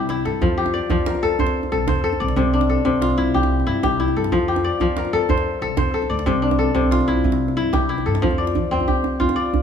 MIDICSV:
0, 0, Header, 1, 4, 480
1, 0, Start_track
1, 0, Key_signature, -1, "major"
1, 0, Tempo, 325556
1, 607, Time_signature, 12, 3, 24, 8
1, 14190, End_track
2, 0, Start_track
2, 0, Title_t, "Kora"
2, 0, Program_c, 0, 46
2, 0, Note_on_c, 0, 48, 75
2, 0, Note_on_c, 0, 62, 67
2, 0, Note_on_c, 0, 67, 62
2, 0, Note_on_c, 0, 69, 59
2, 142, Note_on_c, 0, 64, 77
2, 154, Note_off_c, 0, 69, 0
2, 372, Note_on_c, 0, 69, 57
2, 445, Note_off_c, 0, 62, 0
2, 615, Note_on_c, 0, 53, 80
2, 681, Note_off_c, 0, 48, 0
2, 704, Note_off_c, 0, 64, 0
2, 842, Note_off_c, 0, 67, 0
2, 848, Note_on_c, 0, 67, 64
2, 1086, Note_on_c, 0, 74, 68
2, 1313, Note_off_c, 0, 53, 0
2, 1331, Note_on_c, 0, 53, 75
2, 1574, Note_on_c, 0, 70, 56
2, 1663, Note_off_c, 0, 69, 0
2, 1810, Note_on_c, 0, 69, 76
2, 2056, Note_on_c, 0, 72, 64
2, 2528, Note_off_c, 0, 69, 0
2, 2534, Note_on_c, 0, 69, 77
2, 2623, Note_off_c, 0, 70, 0
2, 2720, Note_off_c, 0, 74, 0
2, 2763, Note_off_c, 0, 72, 0
2, 2769, Note_on_c, 0, 72, 68
2, 2930, Note_off_c, 0, 67, 0
2, 2998, Note_off_c, 0, 69, 0
2, 3004, Note_on_c, 0, 69, 70
2, 3245, Note_on_c, 0, 74, 65
2, 3494, Note_on_c, 0, 48, 76
2, 3556, Note_off_c, 0, 53, 0
2, 3738, Note_on_c, 0, 62, 66
2, 3967, Note_off_c, 0, 69, 0
2, 3972, Note_on_c, 0, 69, 66
2, 4182, Note_off_c, 0, 48, 0
2, 4200, Note_on_c, 0, 48, 76
2, 4446, Note_on_c, 0, 65, 61
2, 4520, Note_off_c, 0, 72, 0
2, 4682, Note_on_c, 0, 64, 84
2, 4879, Note_off_c, 0, 74, 0
2, 4930, Note_on_c, 0, 67, 73
2, 5399, Note_off_c, 0, 64, 0
2, 5405, Note_on_c, 0, 64, 79
2, 5493, Note_off_c, 0, 65, 0
2, 5644, Note_off_c, 0, 67, 0
2, 5649, Note_on_c, 0, 67, 70
2, 5886, Note_off_c, 0, 64, 0
2, 5892, Note_on_c, 0, 64, 81
2, 5915, Note_off_c, 0, 69, 0
2, 6141, Note_on_c, 0, 69, 60
2, 6214, Note_off_c, 0, 62, 0
2, 6370, Note_on_c, 0, 53, 84
2, 6431, Note_off_c, 0, 48, 0
2, 6459, Note_off_c, 0, 64, 0
2, 6601, Note_off_c, 0, 67, 0
2, 6607, Note_on_c, 0, 67, 66
2, 6848, Note_on_c, 0, 74, 69
2, 7072, Note_off_c, 0, 53, 0
2, 7089, Note_on_c, 0, 53, 75
2, 7337, Note_on_c, 0, 70, 57
2, 7425, Note_off_c, 0, 69, 0
2, 7565, Note_on_c, 0, 69, 83
2, 7808, Note_on_c, 0, 72, 71
2, 8278, Note_off_c, 0, 69, 0
2, 8284, Note_on_c, 0, 69, 85
2, 8373, Note_off_c, 0, 70, 0
2, 8481, Note_off_c, 0, 74, 0
2, 8510, Note_off_c, 0, 72, 0
2, 8516, Note_on_c, 0, 72, 68
2, 8689, Note_off_c, 0, 67, 0
2, 8751, Note_off_c, 0, 69, 0
2, 8757, Note_on_c, 0, 69, 70
2, 8988, Note_on_c, 0, 74, 62
2, 9231, Note_on_c, 0, 48, 78
2, 9310, Note_off_c, 0, 53, 0
2, 9467, Note_on_c, 0, 62, 67
2, 9706, Note_off_c, 0, 69, 0
2, 9712, Note_on_c, 0, 69, 65
2, 9928, Note_off_c, 0, 48, 0
2, 9946, Note_on_c, 0, 48, 74
2, 10191, Note_on_c, 0, 65, 59
2, 10267, Note_off_c, 0, 72, 0
2, 10433, Note_on_c, 0, 64, 79
2, 10622, Note_off_c, 0, 74, 0
2, 11151, Note_off_c, 0, 64, 0
2, 11157, Note_on_c, 0, 64, 77
2, 11246, Note_off_c, 0, 65, 0
2, 11393, Note_on_c, 0, 67, 67
2, 11629, Note_off_c, 0, 64, 0
2, 11635, Note_on_c, 0, 64, 72
2, 11655, Note_off_c, 0, 69, 0
2, 11882, Note_on_c, 0, 69, 59
2, 11943, Note_off_c, 0, 62, 0
2, 12121, Note_on_c, 0, 53, 79
2, 12194, Note_off_c, 0, 48, 0
2, 12209, Note_off_c, 0, 64, 0
2, 12357, Note_on_c, 0, 74, 62
2, 12845, Note_on_c, 0, 60, 77
2, 13081, Note_off_c, 0, 67, 0
2, 13086, Note_on_c, 0, 67, 54
2, 13561, Note_on_c, 0, 65, 82
2, 13791, Note_off_c, 0, 74, 0
2, 13797, Note_on_c, 0, 74, 67
2, 13825, Note_off_c, 0, 69, 0
2, 14190, Note_off_c, 0, 53, 0
2, 14190, Note_off_c, 0, 60, 0
2, 14190, Note_off_c, 0, 65, 0
2, 14190, Note_off_c, 0, 67, 0
2, 14190, Note_off_c, 0, 74, 0
2, 14190, End_track
3, 0, Start_track
3, 0, Title_t, "Upright bass"
3, 0, Program_c, 1, 32
3, 0, Note_on_c, 1, 36, 87
3, 258, Note_off_c, 1, 36, 0
3, 378, Note_on_c, 1, 43, 79
3, 556, Note_off_c, 1, 43, 0
3, 612, Note_on_c, 1, 41, 102
3, 1157, Note_off_c, 1, 41, 0
3, 1336, Note_on_c, 1, 41, 82
3, 1696, Note_off_c, 1, 41, 0
3, 1824, Note_on_c, 1, 41, 75
3, 1999, Note_off_c, 1, 41, 0
3, 2056, Note_on_c, 1, 41, 83
3, 2416, Note_off_c, 1, 41, 0
3, 2538, Note_on_c, 1, 36, 79
3, 2715, Note_off_c, 1, 36, 0
3, 2785, Note_on_c, 1, 41, 82
3, 3140, Note_off_c, 1, 41, 0
3, 3264, Note_on_c, 1, 36, 94
3, 3438, Note_off_c, 1, 36, 0
3, 3483, Note_on_c, 1, 36, 106
3, 4028, Note_off_c, 1, 36, 0
3, 4207, Note_on_c, 1, 36, 83
3, 4569, Note_off_c, 1, 36, 0
3, 4691, Note_on_c, 1, 36, 73
3, 4869, Note_off_c, 1, 36, 0
3, 4945, Note_on_c, 1, 36, 77
3, 5300, Note_off_c, 1, 36, 0
3, 5419, Note_on_c, 1, 43, 72
3, 5593, Note_off_c, 1, 43, 0
3, 5649, Note_on_c, 1, 36, 91
3, 6009, Note_off_c, 1, 36, 0
3, 6141, Note_on_c, 1, 43, 93
3, 6314, Note_off_c, 1, 43, 0
3, 6380, Note_on_c, 1, 41, 106
3, 6918, Note_off_c, 1, 41, 0
3, 7088, Note_on_c, 1, 41, 89
3, 7448, Note_off_c, 1, 41, 0
3, 7566, Note_on_c, 1, 41, 81
3, 7745, Note_off_c, 1, 41, 0
3, 7801, Note_on_c, 1, 41, 89
3, 8164, Note_off_c, 1, 41, 0
3, 8275, Note_on_c, 1, 36, 72
3, 8458, Note_off_c, 1, 36, 0
3, 8505, Note_on_c, 1, 41, 89
3, 8874, Note_off_c, 1, 41, 0
3, 9000, Note_on_c, 1, 38, 88
3, 9181, Note_off_c, 1, 38, 0
3, 9244, Note_on_c, 1, 36, 110
3, 9789, Note_off_c, 1, 36, 0
3, 9956, Note_on_c, 1, 36, 81
3, 10321, Note_off_c, 1, 36, 0
3, 10437, Note_on_c, 1, 36, 80
3, 10619, Note_off_c, 1, 36, 0
3, 10683, Note_on_c, 1, 36, 90
3, 11046, Note_off_c, 1, 36, 0
3, 11165, Note_on_c, 1, 43, 71
3, 11345, Note_off_c, 1, 43, 0
3, 11412, Note_on_c, 1, 36, 87
3, 11772, Note_off_c, 1, 36, 0
3, 11896, Note_on_c, 1, 43, 83
3, 12072, Note_off_c, 1, 43, 0
3, 12128, Note_on_c, 1, 41, 90
3, 12615, Note_on_c, 1, 53, 86
3, 12638, Note_off_c, 1, 41, 0
3, 12864, Note_on_c, 1, 41, 90
3, 12886, Note_off_c, 1, 53, 0
3, 13038, Note_off_c, 1, 41, 0
3, 13583, Note_on_c, 1, 41, 85
3, 13758, Note_off_c, 1, 41, 0
3, 14190, End_track
4, 0, Start_track
4, 0, Title_t, "Djembe"
4, 131, Note_on_c, 9, 62, 53
4, 279, Note_off_c, 9, 62, 0
4, 379, Note_on_c, 9, 62, 51
4, 526, Note_off_c, 9, 62, 0
4, 609, Note_on_c, 9, 62, 23
4, 609, Note_on_c, 9, 64, 65
4, 757, Note_off_c, 9, 62, 0
4, 757, Note_off_c, 9, 64, 0
4, 969, Note_on_c, 9, 62, 50
4, 969, Note_on_c, 9, 63, 52
4, 1116, Note_off_c, 9, 62, 0
4, 1116, Note_off_c, 9, 63, 0
4, 1322, Note_on_c, 9, 62, 23
4, 1322, Note_on_c, 9, 64, 78
4, 1470, Note_off_c, 9, 62, 0
4, 1470, Note_off_c, 9, 64, 0
4, 1568, Note_on_c, 9, 62, 73
4, 1692, Note_on_c, 9, 63, 60
4, 1716, Note_off_c, 9, 62, 0
4, 1839, Note_off_c, 9, 63, 0
4, 1927, Note_on_c, 9, 62, 24
4, 2049, Note_on_c, 9, 64, 69
4, 2074, Note_off_c, 9, 62, 0
4, 2161, Note_on_c, 9, 62, 60
4, 2197, Note_off_c, 9, 64, 0
4, 2308, Note_off_c, 9, 62, 0
4, 2405, Note_on_c, 9, 62, 23
4, 2405, Note_on_c, 9, 63, 57
4, 2552, Note_off_c, 9, 62, 0
4, 2552, Note_off_c, 9, 63, 0
4, 2648, Note_on_c, 9, 62, 24
4, 2765, Note_off_c, 9, 62, 0
4, 2765, Note_on_c, 9, 62, 71
4, 2765, Note_on_c, 9, 64, 69
4, 2913, Note_off_c, 9, 62, 0
4, 2913, Note_off_c, 9, 64, 0
4, 3007, Note_on_c, 9, 62, 25
4, 3135, Note_off_c, 9, 62, 0
4, 3135, Note_on_c, 9, 62, 24
4, 3135, Note_on_c, 9, 63, 57
4, 3282, Note_off_c, 9, 62, 0
4, 3282, Note_off_c, 9, 63, 0
4, 3369, Note_on_c, 9, 62, 55
4, 3486, Note_off_c, 9, 62, 0
4, 3486, Note_on_c, 9, 62, 25
4, 3486, Note_on_c, 9, 64, 76
4, 3634, Note_off_c, 9, 62, 0
4, 3634, Note_off_c, 9, 64, 0
4, 3848, Note_on_c, 9, 62, 55
4, 3848, Note_on_c, 9, 63, 58
4, 3995, Note_off_c, 9, 62, 0
4, 3995, Note_off_c, 9, 63, 0
4, 4213, Note_on_c, 9, 62, 25
4, 4213, Note_on_c, 9, 64, 66
4, 4361, Note_off_c, 9, 62, 0
4, 4361, Note_off_c, 9, 64, 0
4, 4453, Note_on_c, 9, 62, 71
4, 4567, Note_on_c, 9, 63, 55
4, 4600, Note_off_c, 9, 62, 0
4, 4714, Note_off_c, 9, 63, 0
4, 4824, Note_on_c, 9, 62, 23
4, 4946, Note_on_c, 9, 64, 70
4, 4971, Note_off_c, 9, 62, 0
4, 5060, Note_on_c, 9, 62, 57
4, 5094, Note_off_c, 9, 64, 0
4, 5207, Note_off_c, 9, 62, 0
4, 5303, Note_on_c, 9, 62, 21
4, 5303, Note_on_c, 9, 63, 53
4, 5450, Note_off_c, 9, 62, 0
4, 5450, Note_off_c, 9, 63, 0
4, 5553, Note_on_c, 9, 62, 23
4, 5655, Note_off_c, 9, 62, 0
4, 5655, Note_on_c, 9, 62, 66
4, 5655, Note_on_c, 9, 64, 69
4, 5803, Note_off_c, 9, 62, 0
4, 5803, Note_off_c, 9, 64, 0
4, 6015, Note_on_c, 9, 62, 24
4, 6015, Note_on_c, 9, 63, 54
4, 6163, Note_off_c, 9, 62, 0
4, 6163, Note_off_c, 9, 63, 0
4, 6256, Note_on_c, 9, 62, 55
4, 6368, Note_off_c, 9, 62, 0
4, 6368, Note_on_c, 9, 62, 22
4, 6368, Note_on_c, 9, 64, 67
4, 6516, Note_off_c, 9, 62, 0
4, 6516, Note_off_c, 9, 64, 0
4, 6726, Note_on_c, 9, 62, 52
4, 6726, Note_on_c, 9, 63, 52
4, 6873, Note_off_c, 9, 62, 0
4, 6873, Note_off_c, 9, 63, 0
4, 7081, Note_on_c, 9, 62, 23
4, 7081, Note_on_c, 9, 64, 68
4, 7228, Note_off_c, 9, 62, 0
4, 7228, Note_off_c, 9, 64, 0
4, 7321, Note_on_c, 9, 62, 69
4, 7442, Note_on_c, 9, 63, 58
4, 7469, Note_off_c, 9, 62, 0
4, 7589, Note_off_c, 9, 63, 0
4, 7692, Note_on_c, 9, 62, 23
4, 7800, Note_on_c, 9, 64, 75
4, 7839, Note_off_c, 9, 62, 0
4, 7924, Note_on_c, 9, 62, 54
4, 7947, Note_off_c, 9, 64, 0
4, 8072, Note_off_c, 9, 62, 0
4, 8166, Note_on_c, 9, 62, 20
4, 8313, Note_off_c, 9, 62, 0
4, 8401, Note_on_c, 9, 62, 23
4, 8511, Note_off_c, 9, 62, 0
4, 8511, Note_on_c, 9, 62, 68
4, 8511, Note_on_c, 9, 64, 72
4, 8658, Note_off_c, 9, 62, 0
4, 8658, Note_off_c, 9, 64, 0
4, 8751, Note_on_c, 9, 62, 22
4, 8880, Note_on_c, 9, 63, 51
4, 8898, Note_off_c, 9, 62, 0
4, 9027, Note_off_c, 9, 63, 0
4, 9125, Note_on_c, 9, 62, 57
4, 9236, Note_off_c, 9, 62, 0
4, 9236, Note_on_c, 9, 62, 24
4, 9236, Note_on_c, 9, 64, 72
4, 9383, Note_off_c, 9, 62, 0
4, 9383, Note_off_c, 9, 64, 0
4, 9481, Note_on_c, 9, 62, 24
4, 9602, Note_off_c, 9, 62, 0
4, 9602, Note_on_c, 9, 62, 52
4, 9602, Note_on_c, 9, 63, 59
4, 9749, Note_off_c, 9, 62, 0
4, 9749, Note_off_c, 9, 63, 0
4, 9959, Note_on_c, 9, 62, 25
4, 9959, Note_on_c, 9, 64, 72
4, 10106, Note_off_c, 9, 62, 0
4, 10106, Note_off_c, 9, 64, 0
4, 10205, Note_on_c, 9, 62, 74
4, 10327, Note_on_c, 9, 63, 55
4, 10352, Note_off_c, 9, 62, 0
4, 10474, Note_off_c, 9, 63, 0
4, 10560, Note_on_c, 9, 62, 25
4, 10678, Note_off_c, 9, 62, 0
4, 10678, Note_on_c, 9, 62, 21
4, 10678, Note_on_c, 9, 64, 74
4, 10795, Note_off_c, 9, 62, 0
4, 10795, Note_on_c, 9, 62, 57
4, 10825, Note_off_c, 9, 64, 0
4, 10943, Note_off_c, 9, 62, 0
4, 11032, Note_on_c, 9, 62, 23
4, 11032, Note_on_c, 9, 63, 63
4, 11179, Note_off_c, 9, 62, 0
4, 11179, Note_off_c, 9, 63, 0
4, 11404, Note_on_c, 9, 62, 76
4, 11404, Note_on_c, 9, 64, 67
4, 11552, Note_off_c, 9, 62, 0
4, 11552, Note_off_c, 9, 64, 0
4, 11641, Note_on_c, 9, 62, 23
4, 11766, Note_off_c, 9, 62, 0
4, 11766, Note_on_c, 9, 62, 24
4, 11766, Note_on_c, 9, 63, 60
4, 11913, Note_off_c, 9, 62, 0
4, 11913, Note_off_c, 9, 63, 0
4, 12012, Note_on_c, 9, 62, 66
4, 12137, Note_on_c, 9, 64, 71
4, 12160, Note_off_c, 9, 62, 0
4, 12248, Note_on_c, 9, 63, 53
4, 12284, Note_off_c, 9, 64, 0
4, 12376, Note_on_c, 9, 62, 22
4, 12395, Note_off_c, 9, 63, 0
4, 12492, Note_off_c, 9, 62, 0
4, 12492, Note_on_c, 9, 62, 53
4, 12608, Note_on_c, 9, 64, 66
4, 12639, Note_off_c, 9, 62, 0
4, 12737, Note_on_c, 9, 62, 19
4, 12756, Note_off_c, 9, 64, 0
4, 12884, Note_off_c, 9, 62, 0
4, 12979, Note_on_c, 9, 62, 20
4, 12979, Note_on_c, 9, 63, 56
4, 13093, Note_on_c, 9, 64, 70
4, 13126, Note_off_c, 9, 62, 0
4, 13126, Note_off_c, 9, 63, 0
4, 13221, Note_on_c, 9, 62, 22
4, 13241, Note_off_c, 9, 64, 0
4, 13328, Note_off_c, 9, 62, 0
4, 13328, Note_on_c, 9, 62, 20
4, 13328, Note_on_c, 9, 63, 70
4, 13475, Note_off_c, 9, 62, 0
4, 13475, Note_off_c, 9, 63, 0
4, 13574, Note_on_c, 9, 64, 69
4, 13697, Note_on_c, 9, 62, 55
4, 13697, Note_on_c, 9, 63, 57
4, 13722, Note_off_c, 9, 64, 0
4, 13845, Note_off_c, 9, 62, 0
4, 13845, Note_off_c, 9, 63, 0
4, 13947, Note_on_c, 9, 62, 22
4, 14061, Note_off_c, 9, 62, 0
4, 14061, Note_on_c, 9, 62, 22
4, 14061, Note_on_c, 9, 63, 69
4, 14061, Note_on_c, 9, 64, 68
4, 14190, Note_off_c, 9, 62, 0
4, 14190, Note_off_c, 9, 63, 0
4, 14190, Note_off_c, 9, 64, 0
4, 14190, End_track
0, 0, End_of_file